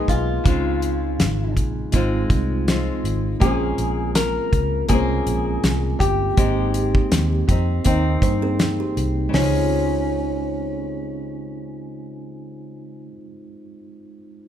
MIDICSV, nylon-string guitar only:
0, 0, Header, 1, 2, 480
1, 0, Start_track
1, 0, Tempo, 739919
1, 296, Time_signature, 4, 2, 24, 8
1, 9393, End_track
2, 0, Start_track
2, 0, Title_t, "Nylon-string guitar"
2, 0, Program_c, 0, 24
2, 0, Note_on_c, 0, 56, 51
2, 0, Note_on_c, 0, 59, 56
2, 0, Note_on_c, 0, 63, 63
2, 0, Note_on_c, 0, 70, 55
2, 284, Note_on_c, 0, 49, 78
2, 296, Note_off_c, 0, 56, 0
2, 298, Note_off_c, 0, 59, 0
2, 299, Note_on_c, 0, 56, 71
2, 302, Note_off_c, 0, 63, 0
2, 306, Note_off_c, 0, 70, 0
2, 309, Note_on_c, 0, 60, 73
2, 318, Note_on_c, 0, 65, 74
2, 1250, Note_off_c, 0, 49, 0
2, 1258, Note_off_c, 0, 56, 0
2, 1261, Note_on_c, 0, 56, 94
2, 1262, Note_off_c, 0, 60, 0
2, 1264, Note_on_c, 0, 60, 94
2, 1267, Note_off_c, 0, 65, 0
2, 1270, Note_on_c, 0, 65, 99
2, 1739, Note_off_c, 0, 56, 0
2, 1742, Note_on_c, 0, 56, 63
2, 1744, Note_off_c, 0, 60, 0
2, 1747, Note_on_c, 0, 60, 65
2, 1753, Note_off_c, 0, 65, 0
2, 1756, Note_on_c, 0, 65, 69
2, 2202, Note_off_c, 0, 56, 0
2, 2205, Note_on_c, 0, 58, 73
2, 2218, Note_off_c, 0, 60, 0
2, 2220, Note_on_c, 0, 61, 71
2, 2226, Note_off_c, 0, 65, 0
2, 2229, Note_on_c, 0, 68, 80
2, 2240, Note_on_c, 0, 72, 84
2, 3160, Note_off_c, 0, 58, 0
2, 3168, Note_on_c, 0, 58, 81
2, 3173, Note_off_c, 0, 61, 0
2, 3180, Note_on_c, 0, 61, 80
2, 3187, Note_off_c, 0, 68, 0
2, 3199, Note_off_c, 0, 72, 0
2, 3202, Note_on_c, 0, 72, 86
2, 4132, Note_off_c, 0, 58, 0
2, 4132, Note_on_c, 0, 56, 75
2, 4136, Note_on_c, 0, 60, 80
2, 4138, Note_off_c, 0, 61, 0
2, 4142, Note_on_c, 0, 63, 77
2, 4147, Note_on_c, 0, 67, 73
2, 4842, Note_off_c, 0, 67, 0
2, 4849, Note_on_c, 0, 67, 55
2, 4854, Note_off_c, 0, 63, 0
2, 4862, Note_on_c, 0, 63, 52
2, 4869, Note_off_c, 0, 56, 0
2, 4869, Note_off_c, 0, 60, 0
2, 4871, Note_on_c, 0, 60, 51
2, 5089, Note_off_c, 0, 60, 0
2, 5093, Note_off_c, 0, 67, 0
2, 5097, Note_on_c, 0, 60, 85
2, 5099, Note_off_c, 0, 63, 0
2, 5108, Note_on_c, 0, 63, 96
2, 5472, Note_off_c, 0, 72, 0
2, 6025, Note_on_c, 0, 49, 77
2, 6062, Note_off_c, 0, 63, 0
2, 6101, Note_on_c, 0, 65, 79
2, 6131, Note_on_c, 0, 68, 69
2, 7367, Note_off_c, 0, 60, 0
2, 8486, Note_off_c, 0, 49, 0
2, 8562, Note_off_c, 0, 65, 0
2, 8592, Note_off_c, 0, 68, 0
2, 9393, End_track
0, 0, End_of_file